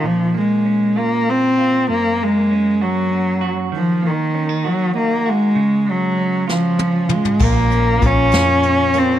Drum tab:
CC |------------|------------|------------|------------|
HH |------------|------------|------------|------------|
SD |------------|------------|------------|------o-----|
T1 |------------|------------|------------|--------o---|
T2 |------------|------------|------------|----------o-|
FT |------------|------------|------------|-----------o|
BD |------------|------------|------------|------------|

CC |x-----------|
HH |--x-x-x-x-x-|
SD |------o-----|
T1 |------------|
T2 |------------|
FT |------------|
BD |o---o-------|